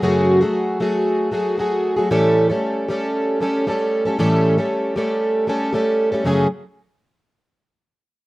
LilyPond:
\new Staff \with { instrumentName = "Twelve-string acoustic guitar" } { \time 4/4 \key fis \minor \tempo 4 = 116 <fis, cis fis a fis' gis'>8. <fis a fis' gis'>8. <fis a fis' gis'>4 <fis a fis' gis'>8 <fis a fis' gis'>8. <fis a fis' gis'>16 | <a, e g a cis' a'>8. <g a cis' a'>8. <g a cis' a'>4 <g a cis' a'>8 <g a cis' a'>8. <g a cis' a'>16 | <a, e g a cis' a'>8. <g a cis' a'>8. <g a cis' a'>4 <g a cis' a'>8 <g a cis' a'>8. <g a cis' a'>16 | <fis, cis fis a cis' gis'>8 r2. r8 | }